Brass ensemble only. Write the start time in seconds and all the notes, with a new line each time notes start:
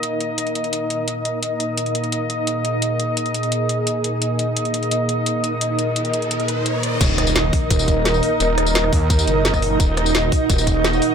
Already playing: A#3 D#4 D#5
1.43 A#3 D#4 D#5
4.22 A#3 D#4 D#5
7.53 A#3 D#4 D#5
8.93 A#3 D#4 D#5
9.54 A#3 D#4 D#5
10.32 A#3 D#4 D#5